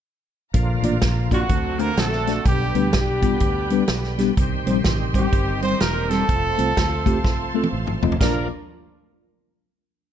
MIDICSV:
0, 0, Header, 1, 8, 480
1, 0, Start_track
1, 0, Key_signature, -2, "major"
1, 0, Tempo, 478088
1, 547, Time_signature, 4, 2, 24, 8
1, 10165, End_track
2, 0, Start_track
2, 0, Title_t, "String section"
2, 0, Program_c, 0, 48
2, 540, Note_on_c, 0, 82, 73
2, 541, Note_on_c, 0, 77, 57
2, 544, Note_on_c, 0, 74, 59
2, 548, Note_on_c, 0, 70, 62
2, 1494, Note_off_c, 0, 82, 0
2, 1495, Note_off_c, 0, 77, 0
2, 1498, Note_off_c, 0, 70, 0
2, 1507, Note_on_c, 0, 78, 55
2, 1509, Note_on_c, 0, 72, 63
2, 1513, Note_on_c, 0, 81, 75
2, 2458, Note_off_c, 0, 78, 0
2, 2459, Note_off_c, 0, 72, 0
2, 2459, Note_on_c, 0, 83, 75
2, 2461, Note_off_c, 0, 81, 0
2, 2463, Note_on_c, 0, 79, 63
2, 2466, Note_on_c, 0, 71, 64
2, 4352, Note_off_c, 0, 74, 0
2, 4368, Note_off_c, 0, 83, 0
2, 4371, Note_off_c, 0, 71, 0
2, 4378, Note_on_c, 0, 75, 63
2, 4381, Note_on_c, 0, 84, 75
2, 4384, Note_on_c, 0, 72, 67
2, 6274, Note_off_c, 0, 79, 0
2, 6289, Note_off_c, 0, 75, 0
2, 6291, Note_off_c, 0, 84, 0
2, 6308, Note_on_c, 0, 81, 61
2, 6312, Note_on_c, 0, 77, 65
2, 6312, Note_on_c, 0, 84, 76
2, 8193, Note_off_c, 0, 72, 0
2, 8213, Note_off_c, 0, 81, 0
2, 8214, Note_off_c, 0, 84, 0
2, 8215, Note_off_c, 0, 77, 0
2, 8233, Note_on_c, 0, 62, 57
2, 8234, Note_on_c, 0, 65, 57
2, 8236, Note_on_c, 0, 74, 69
2, 8238, Note_on_c, 0, 70, 55
2, 8511, Note_off_c, 0, 62, 0
2, 8511, Note_off_c, 0, 65, 0
2, 8512, Note_off_c, 0, 74, 0
2, 8514, Note_off_c, 0, 70, 0
2, 10165, End_track
3, 0, Start_track
3, 0, Title_t, "Trumpet"
3, 0, Program_c, 1, 56
3, 1334, Note_on_c, 1, 66, 80
3, 1815, Note_on_c, 1, 70, 86
3, 1830, Note_off_c, 1, 66, 0
3, 2006, Note_on_c, 1, 69, 81
3, 2021, Note_off_c, 1, 70, 0
3, 2473, Note_off_c, 1, 69, 0
3, 2479, Note_on_c, 1, 67, 87
3, 2921, Note_off_c, 1, 67, 0
3, 2967, Note_on_c, 1, 67, 76
3, 4178, Note_off_c, 1, 67, 0
3, 5168, Note_on_c, 1, 67, 78
3, 5617, Note_off_c, 1, 67, 0
3, 5650, Note_on_c, 1, 72, 91
3, 5833, Note_on_c, 1, 70, 82
3, 5848, Note_off_c, 1, 72, 0
3, 6122, Note_on_c, 1, 69, 93
3, 6137, Note_off_c, 1, 70, 0
3, 7750, Note_off_c, 1, 69, 0
3, 8225, Note_on_c, 1, 70, 70
3, 8507, Note_off_c, 1, 70, 0
3, 10165, End_track
4, 0, Start_track
4, 0, Title_t, "Tine electric piano"
4, 0, Program_c, 2, 4
4, 549, Note_on_c, 2, 46, 61
4, 837, Note_on_c, 2, 58, 75
4, 844, Note_on_c, 2, 62, 70
4, 846, Note_on_c, 2, 65, 67
4, 848, Note_on_c, 2, 74, 86
4, 948, Note_off_c, 2, 58, 0
4, 952, Note_off_c, 2, 62, 0
4, 953, Note_off_c, 2, 65, 0
4, 954, Note_off_c, 2, 74, 0
4, 1286, Note_off_c, 2, 46, 0
4, 1318, Note_on_c, 2, 58, 64
4, 1323, Note_on_c, 2, 62, 57
4, 1325, Note_on_c, 2, 65, 56
4, 1333, Note_on_c, 2, 74, 68
4, 1429, Note_off_c, 2, 58, 0
4, 1431, Note_off_c, 2, 62, 0
4, 1432, Note_off_c, 2, 65, 0
4, 1436, Note_off_c, 2, 74, 0
4, 1505, Note_on_c, 2, 50, 53
4, 1795, Note_on_c, 2, 57, 64
4, 1803, Note_on_c, 2, 62, 61
4, 1808, Note_on_c, 2, 66, 56
4, 1809, Note_on_c, 2, 72, 66
4, 1908, Note_off_c, 2, 57, 0
4, 1912, Note_off_c, 2, 62, 0
4, 1914, Note_off_c, 2, 66, 0
4, 1914, Note_off_c, 2, 72, 0
4, 2245, Note_off_c, 2, 50, 0
4, 2279, Note_on_c, 2, 57, 63
4, 2286, Note_on_c, 2, 62, 60
4, 2293, Note_on_c, 2, 66, 60
4, 2293, Note_on_c, 2, 74, 67
4, 2390, Note_off_c, 2, 57, 0
4, 2393, Note_off_c, 2, 62, 0
4, 2397, Note_off_c, 2, 66, 0
4, 2397, Note_off_c, 2, 74, 0
4, 2473, Note_on_c, 2, 47, 50
4, 2762, Note_on_c, 2, 55, 64
4, 2768, Note_on_c, 2, 59, 58
4, 2769, Note_on_c, 2, 62, 60
4, 2774, Note_on_c, 2, 71, 68
4, 2872, Note_off_c, 2, 55, 0
4, 2874, Note_off_c, 2, 59, 0
4, 2875, Note_off_c, 2, 62, 0
4, 2878, Note_off_c, 2, 71, 0
4, 3210, Note_off_c, 2, 47, 0
4, 3233, Note_on_c, 2, 55, 64
4, 3235, Note_on_c, 2, 59, 56
4, 3241, Note_on_c, 2, 62, 56
4, 3241, Note_on_c, 2, 65, 67
4, 3348, Note_off_c, 2, 55, 0
4, 3349, Note_off_c, 2, 59, 0
4, 3351, Note_off_c, 2, 62, 0
4, 3352, Note_off_c, 2, 65, 0
4, 3721, Note_on_c, 2, 55, 77
4, 3725, Note_on_c, 2, 59, 68
4, 3733, Note_on_c, 2, 62, 71
4, 3740, Note_on_c, 2, 71, 85
4, 3832, Note_off_c, 2, 55, 0
4, 3834, Note_off_c, 2, 59, 0
4, 3838, Note_off_c, 2, 62, 0
4, 3842, Note_off_c, 2, 71, 0
4, 4197, Note_on_c, 2, 55, 80
4, 4203, Note_on_c, 2, 59, 68
4, 4208, Note_on_c, 2, 62, 69
4, 4211, Note_on_c, 2, 67, 84
4, 4311, Note_off_c, 2, 55, 0
4, 4314, Note_off_c, 2, 59, 0
4, 4316, Note_off_c, 2, 62, 0
4, 4318, Note_off_c, 2, 67, 0
4, 4384, Note_on_c, 2, 48, 66
4, 4682, Note_on_c, 2, 60, 72
4, 4683, Note_on_c, 2, 55, 80
4, 4693, Note_on_c, 2, 63, 71
4, 4694, Note_on_c, 2, 72, 84
4, 4794, Note_off_c, 2, 55, 0
4, 4794, Note_off_c, 2, 60, 0
4, 4799, Note_off_c, 2, 63, 0
4, 4800, Note_off_c, 2, 72, 0
4, 5127, Note_off_c, 2, 48, 0
4, 5164, Note_on_c, 2, 55, 63
4, 5167, Note_on_c, 2, 60, 60
4, 5173, Note_on_c, 2, 63, 58
4, 5178, Note_on_c, 2, 72, 72
4, 5275, Note_off_c, 2, 55, 0
4, 5277, Note_off_c, 2, 60, 0
4, 5280, Note_off_c, 2, 63, 0
4, 5282, Note_off_c, 2, 72, 0
4, 5646, Note_on_c, 2, 55, 63
4, 5648, Note_on_c, 2, 60, 63
4, 5650, Note_on_c, 2, 63, 59
4, 5657, Note_on_c, 2, 72, 73
4, 5756, Note_off_c, 2, 55, 0
4, 5757, Note_off_c, 2, 60, 0
4, 5759, Note_off_c, 2, 63, 0
4, 5762, Note_off_c, 2, 72, 0
4, 6124, Note_on_c, 2, 55, 65
4, 6129, Note_on_c, 2, 60, 59
4, 6134, Note_on_c, 2, 63, 56
4, 6138, Note_on_c, 2, 69, 73
4, 6236, Note_off_c, 2, 55, 0
4, 6239, Note_off_c, 2, 60, 0
4, 6241, Note_off_c, 2, 63, 0
4, 6243, Note_off_c, 2, 69, 0
4, 6605, Note_on_c, 2, 57, 64
4, 6608, Note_on_c, 2, 60, 61
4, 6612, Note_on_c, 2, 65, 57
4, 6616, Note_on_c, 2, 72, 70
4, 6716, Note_off_c, 2, 57, 0
4, 6718, Note_off_c, 2, 60, 0
4, 6720, Note_off_c, 2, 65, 0
4, 6722, Note_off_c, 2, 72, 0
4, 7082, Note_on_c, 2, 57, 73
4, 7090, Note_on_c, 2, 60, 67
4, 7092, Note_on_c, 2, 65, 66
4, 7097, Note_on_c, 2, 67, 86
4, 7195, Note_off_c, 2, 57, 0
4, 7199, Note_off_c, 2, 60, 0
4, 7200, Note_off_c, 2, 65, 0
4, 7203, Note_off_c, 2, 67, 0
4, 7576, Note_on_c, 2, 57, 76
4, 7579, Note_on_c, 2, 60, 68
4, 7585, Note_on_c, 2, 65, 66
4, 7589, Note_on_c, 2, 69, 82
4, 7682, Note_off_c, 2, 57, 0
4, 7684, Note_off_c, 2, 60, 0
4, 7686, Note_off_c, 2, 65, 0
4, 7689, Note_off_c, 2, 69, 0
4, 8057, Note_on_c, 2, 57, 75
4, 8061, Note_on_c, 2, 60, 66
4, 8064, Note_on_c, 2, 65, 70
4, 8071, Note_on_c, 2, 75, 77
4, 8163, Note_off_c, 2, 57, 0
4, 8164, Note_off_c, 2, 60, 0
4, 8166, Note_off_c, 2, 65, 0
4, 8170, Note_off_c, 2, 75, 0
4, 8247, Note_on_c, 2, 62, 58
4, 8249, Note_on_c, 2, 65, 63
4, 8252, Note_on_c, 2, 74, 75
4, 8254, Note_on_c, 2, 34, 67
4, 8254, Note_on_c, 2, 58, 66
4, 8518, Note_off_c, 2, 62, 0
4, 8519, Note_off_c, 2, 65, 0
4, 8521, Note_off_c, 2, 74, 0
4, 8522, Note_off_c, 2, 34, 0
4, 8522, Note_off_c, 2, 58, 0
4, 10165, End_track
5, 0, Start_track
5, 0, Title_t, "Horn section"
5, 0, Program_c, 3, 61
5, 1330, Note_on_c, 3, 54, 75
5, 1330, Note_on_c, 3, 66, 81
5, 1331, Note_on_c, 3, 60, 63
5, 1336, Note_on_c, 3, 57, 57
5, 1774, Note_off_c, 3, 54, 0
5, 1774, Note_off_c, 3, 66, 0
5, 1797, Note_on_c, 3, 58, 79
5, 1797, Note_on_c, 3, 70, 85
5, 1978, Note_off_c, 3, 57, 0
5, 1978, Note_on_c, 3, 57, 90
5, 1978, Note_on_c, 3, 69, 97
5, 1983, Note_off_c, 3, 58, 0
5, 1983, Note_off_c, 3, 70, 0
5, 1985, Note_off_c, 3, 60, 0
5, 1997, Note_on_c, 3, 60, 65
5, 1999, Note_on_c, 3, 66, 70
5, 2430, Note_off_c, 3, 57, 0
5, 2430, Note_off_c, 3, 69, 0
5, 2439, Note_off_c, 3, 60, 0
5, 2441, Note_off_c, 3, 66, 0
5, 2457, Note_on_c, 3, 55, 79
5, 2457, Note_on_c, 3, 67, 86
5, 2485, Note_on_c, 3, 62, 63
5, 2486, Note_on_c, 3, 59, 58
5, 2919, Note_off_c, 3, 55, 0
5, 2919, Note_off_c, 3, 67, 0
5, 2931, Note_on_c, 3, 55, 71
5, 2931, Note_on_c, 3, 67, 77
5, 2947, Note_off_c, 3, 62, 0
5, 2949, Note_off_c, 3, 59, 0
5, 2959, Note_on_c, 3, 62, 55
5, 2961, Note_on_c, 3, 59, 56
5, 4160, Note_off_c, 3, 55, 0
5, 4160, Note_off_c, 3, 67, 0
5, 4175, Note_off_c, 3, 59, 0
5, 4175, Note_off_c, 3, 62, 0
5, 5186, Note_on_c, 3, 63, 64
5, 5189, Note_on_c, 3, 60, 61
5, 5200, Note_on_c, 3, 55, 75
5, 5200, Note_on_c, 3, 67, 82
5, 5634, Note_off_c, 3, 55, 0
5, 5634, Note_off_c, 3, 67, 0
5, 5669, Note_off_c, 3, 60, 0
5, 5669, Note_on_c, 3, 60, 73
5, 5669, Note_on_c, 3, 72, 80
5, 5831, Note_off_c, 3, 60, 0
5, 5831, Note_off_c, 3, 72, 0
5, 5842, Note_on_c, 3, 58, 83
5, 5842, Note_on_c, 3, 70, 90
5, 6100, Note_off_c, 3, 63, 0
5, 6116, Note_off_c, 3, 58, 0
5, 6116, Note_off_c, 3, 70, 0
5, 6150, Note_on_c, 3, 57, 82
5, 6150, Note_on_c, 3, 69, 89
5, 6152, Note_on_c, 3, 60, 61
5, 6153, Note_on_c, 3, 65, 58
5, 7725, Note_off_c, 3, 60, 0
5, 7725, Note_off_c, 3, 65, 0
5, 7764, Note_off_c, 3, 57, 0
5, 7764, Note_off_c, 3, 69, 0
5, 8246, Note_on_c, 3, 58, 66
5, 8246, Note_on_c, 3, 70, 72
5, 8518, Note_off_c, 3, 58, 0
5, 8518, Note_off_c, 3, 70, 0
5, 10165, End_track
6, 0, Start_track
6, 0, Title_t, "Tonewheel organ"
6, 0, Program_c, 4, 16
6, 538, Note_on_c, 4, 50, 67
6, 539, Note_on_c, 4, 53, 62
6, 539, Note_on_c, 4, 58, 63
6, 542, Note_on_c, 4, 65, 75
6, 1483, Note_off_c, 4, 50, 0
6, 1484, Note_off_c, 4, 53, 0
6, 1484, Note_off_c, 4, 58, 0
6, 1485, Note_off_c, 4, 65, 0
6, 1518, Note_on_c, 4, 57, 52
6, 1519, Note_on_c, 4, 50, 59
6, 1520, Note_on_c, 4, 60, 52
6, 1524, Note_on_c, 4, 65, 50
6, 1576, Note_on_c, 4, 66, 66
6, 1587, Note_off_c, 4, 65, 0
6, 2455, Note_off_c, 4, 50, 0
6, 2455, Note_off_c, 4, 57, 0
6, 2455, Note_off_c, 4, 60, 0
6, 2481, Note_on_c, 4, 50, 58
6, 2481, Note_on_c, 4, 59, 51
6, 2481, Note_on_c, 4, 67, 60
6, 2484, Note_off_c, 4, 66, 0
6, 2485, Note_on_c, 4, 55, 53
6, 4360, Note_off_c, 4, 50, 0
6, 4360, Note_off_c, 4, 59, 0
6, 4360, Note_off_c, 4, 67, 0
6, 4362, Note_off_c, 4, 55, 0
6, 4405, Note_on_c, 4, 55, 61
6, 4406, Note_on_c, 4, 67, 75
6, 4408, Note_on_c, 4, 60, 65
6, 4413, Note_on_c, 4, 51, 70
6, 6283, Note_off_c, 4, 55, 0
6, 6284, Note_off_c, 4, 67, 0
6, 6285, Note_off_c, 4, 60, 0
6, 6288, Note_off_c, 4, 51, 0
6, 6320, Note_on_c, 4, 57, 51
6, 6326, Note_on_c, 4, 53, 59
6, 6328, Note_on_c, 4, 60, 53
6, 6328, Note_on_c, 4, 69, 65
6, 8199, Note_off_c, 4, 57, 0
6, 8202, Note_off_c, 4, 53, 0
6, 8203, Note_off_c, 4, 60, 0
6, 8203, Note_off_c, 4, 69, 0
6, 8238, Note_on_c, 4, 58, 66
6, 8238, Note_on_c, 4, 70, 77
6, 8239, Note_on_c, 4, 62, 63
6, 8242, Note_on_c, 4, 53, 70
6, 8513, Note_off_c, 4, 70, 0
6, 8514, Note_off_c, 4, 58, 0
6, 8514, Note_off_c, 4, 62, 0
6, 8516, Note_off_c, 4, 53, 0
6, 10165, End_track
7, 0, Start_track
7, 0, Title_t, "Fingered electric bass"
7, 0, Program_c, 5, 33
7, 542, Note_on_c, 5, 34, 79
7, 797, Note_off_c, 5, 34, 0
7, 829, Note_on_c, 5, 33, 77
7, 990, Note_off_c, 5, 33, 0
7, 1025, Note_on_c, 5, 34, 83
7, 1434, Note_off_c, 5, 34, 0
7, 1498, Note_on_c, 5, 38, 91
7, 1910, Note_off_c, 5, 38, 0
7, 1981, Note_on_c, 5, 34, 79
7, 2392, Note_off_c, 5, 34, 0
7, 2463, Note_on_c, 5, 35, 85
7, 2719, Note_off_c, 5, 35, 0
7, 2760, Note_on_c, 5, 38, 75
7, 2918, Note_off_c, 5, 38, 0
7, 2953, Note_on_c, 5, 35, 78
7, 3360, Note_off_c, 5, 35, 0
7, 3419, Note_on_c, 5, 38, 76
7, 3832, Note_off_c, 5, 38, 0
7, 3906, Note_on_c, 5, 35, 78
7, 4317, Note_off_c, 5, 35, 0
7, 4390, Note_on_c, 5, 36, 84
7, 4644, Note_off_c, 5, 36, 0
7, 4691, Note_on_c, 5, 34, 69
7, 4846, Note_off_c, 5, 34, 0
7, 4876, Note_on_c, 5, 33, 75
7, 5283, Note_off_c, 5, 33, 0
7, 5348, Note_on_c, 5, 31, 83
7, 5759, Note_off_c, 5, 31, 0
7, 5837, Note_on_c, 5, 28, 76
7, 6245, Note_off_c, 5, 28, 0
7, 6312, Note_on_c, 5, 29, 90
7, 6567, Note_off_c, 5, 29, 0
7, 6616, Note_on_c, 5, 36, 74
7, 6770, Note_off_c, 5, 36, 0
7, 6800, Note_on_c, 5, 38, 78
7, 7273, Note_off_c, 5, 38, 0
7, 7273, Note_on_c, 5, 36, 73
7, 7682, Note_off_c, 5, 36, 0
7, 7759, Note_on_c, 5, 33, 76
7, 8010, Note_off_c, 5, 33, 0
7, 8056, Note_on_c, 5, 29, 70
7, 8210, Note_off_c, 5, 29, 0
7, 8237, Note_on_c, 5, 34, 76
7, 8513, Note_off_c, 5, 34, 0
7, 10165, End_track
8, 0, Start_track
8, 0, Title_t, "Drums"
8, 541, Note_on_c, 9, 42, 80
8, 545, Note_on_c, 9, 36, 87
8, 641, Note_off_c, 9, 42, 0
8, 645, Note_off_c, 9, 36, 0
8, 837, Note_on_c, 9, 42, 61
8, 938, Note_off_c, 9, 42, 0
8, 1020, Note_on_c, 9, 38, 96
8, 1020, Note_on_c, 9, 42, 72
8, 1029, Note_on_c, 9, 36, 78
8, 1120, Note_off_c, 9, 38, 0
8, 1120, Note_off_c, 9, 42, 0
8, 1129, Note_off_c, 9, 36, 0
8, 1318, Note_on_c, 9, 36, 78
8, 1323, Note_on_c, 9, 42, 64
8, 1418, Note_off_c, 9, 36, 0
8, 1423, Note_off_c, 9, 42, 0
8, 1498, Note_on_c, 9, 42, 65
8, 1502, Note_on_c, 9, 36, 89
8, 1598, Note_off_c, 9, 42, 0
8, 1602, Note_off_c, 9, 36, 0
8, 1800, Note_on_c, 9, 42, 50
8, 1900, Note_off_c, 9, 42, 0
8, 1980, Note_on_c, 9, 42, 70
8, 1985, Note_on_c, 9, 38, 99
8, 2080, Note_off_c, 9, 42, 0
8, 2085, Note_off_c, 9, 38, 0
8, 2133, Note_on_c, 9, 38, 30
8, 2233, Note_off_c, 9, 38, 0
8, 2281, Note_on_c, 9, 42, 61
8, 2288, Note_on_c, 9, 38, 30
8, 2382, Note_off_c, 9, 42, 0
8, 2388, Note_off_c, 9, 38, 0
8, 2462, Note_on_c, 9, 42, 78
8, 2466, Note_on_c, 9, 36, 86
8, 2563, Note_off_c, 9, 42, 0
8, 2566, Note_off_c, 9, 36, 0
8, 2760, Note_on_c, 9, 42, 64
8, 2860, Note_off_c, 9, 42, 0
8, 2941, Note_on_c, 9, 38, 93
8, 2941, Note_on_c, 9, 42, 72
8, 2951, Note_on_c, 9, 36, 81
8, 3041, Note_off_c, 9, 38, 0
8, 3041, Note_off_c, 9, 42, 0
8, 3052, Note_off_c, 9, 36, 0
8, 3236, Note_on_c, 9, 42, 63
8, 3238, Note_on_c, 9, 36, 80
8, 3337, Note_off_c, 9, 42, 0
8, 3339, Note_off_c, 9, 36, 0
8, 3416, Note_on_c, 9, 42, 65
8, 3423, Note_on_c, 9, 36, 86
8, 3517, Note_off_c, 9, 42, 0
8, 3523, Note_off_c, 9, 36, 0
8, 3717, Note_on_c, 9, 42, 52
8, 3818, Note_off_c, 9, 42, 0
8, 3891, Note_on_c, 9, 42, 68
8, 3896, Note_on_c, 9, 38, 102
8, 3991, Note_off_c, 9, 42, 0
8, 3996, Note_off_c, 9, 38, 0
8, 4053, Note_on_c, 9, 38, 31
8, 4153, Note_off_c, 9, 38, 0
8, 4202, Note_on_c, 9, 42, 59
8, 4208, Note_on_c, 9, 38, 31
8, 4302, Note_off_c, 9, 42, 0
8, 4308, Note_off_c, 9, 38, 0
8, 4390, Note_on_c, 9, 42, 76
8, 4391, Note_on_c, 9, 36, 89
8, 4490, Note_off_c, 9, 42, 0
8, 4491, Note_off_c, 9, 36, 0
8, 4686, Note_on_c, 9, 42, 64
8, 4786, Note_off_c, 9, 42, 0
8, 4863, Note_on_c, 9, 38, 93
8, 4863, Note_on_c, 9, 42, 77
8, 4874, Note_on_c, 9, 36, 79
8, 4964, Note_off_c, 9, 38, 0
8, 4964, Note_off_c, 9, 42, 0
8, 4975, Note_off_c, 9, 36, 0
8, 5163, Note_on_c, 9, 36, 74
8, 5169, Note_on_c, 9, 42, 59
8, 5263, Note_off_c, 9, 36, 0
8, 5270, Note_off_c, 9, 42, 0
8, 5348, Note_on_c, 9, 42, 66
8, 5349, Note_on_c, 9, 36, 89
8, 5449, Note_off_c, 9, 36, 0
8, 5449, Note_off_c, 9, 42, 0
8, 5646, Note_on_c, 9, 42, 51
8, 5747, Note_off_c, 9, 42, 0
8, 5827, Note_on_c, 9, 42, 71
8, 5832, Note_on_c, 9, 38, 96
8, 5927, Note_off_c, 9, 42, 0
8, 5932, Note_off_c, 9, 38, 0
8, 6130, Note_on_c, 9, 42, 59
8, 6136, Note_on_c, 9, 38, 33
8, 6230, Note_off_c, 9, 42, 0
8, 6236, Note_off_c, 9, 38, 0
8, 6313, Note_on_c, 9, 42, 76
8, 6315, Note_on_c, 9, 36, 90
8, 6414, Note_off_c, 9, 42, 0
8, 6415, Note_off_c, 9, 36, 0
8, 6612, Note_on_c, 9, 42, 68
8, 6712, Note_off_c, 9, 42, 0
8, 6799, Note_on_c, 9, 38, 94
8, 6799, Note_on_c, 9, 42, 74
8, 6801, Note_on_c, 9, 36, 74
8, 6899, Note_off_c, 9, 38, 0
8, 6899, Note_off_c, 9, 42, 0
8, 6901, Note_off_c, 9, 36, 0
8, 7089, Note_on_c, 9, 36, 76
8, 7095, Note_on_c, 9, 42, 59
8, 7189, Note_off_c, 9, 36, 0
8, 7196, Note_off_c, 9, 42, 0
8, 7273, Note_on_c, 9, 36, 86
8, 7278, Note_on_c, 9, 38, 46
8, 7374, Note_off_c, 9, 36, 0
8, 7378, Note_off_c, 9, 38, 0
8, 7666, Note_on_c, 9, 48, 52
8, 7766, Note_off_c, 9, 48, 0
8, 7904, Note_on_c, 9, 45, 63
8, 8004, Note_off_c, 9, 45, 0
8, 8059, Note_on_c, 9, 43, 83
8, 8153, Note_off_c, 9, 43, 0
8, 8153, Note_on_c, 9, 43, 74
8, 8240, Note_on_c, 9, 36, 84
8, 8243, Note_on_c, 9, 38, 83
8, 8243, Note_on_c, 9, 55, 72
8, 8253, Note_off_c, 9, 43, 0
8, 8340, Note_off_c, 9, 36, 0
8, 8343, Note_off_c, 9, 38, 0
8, 8343, Note_off_c, 9, 55, 0
8, 10165, End_track
0, 0, End_of_file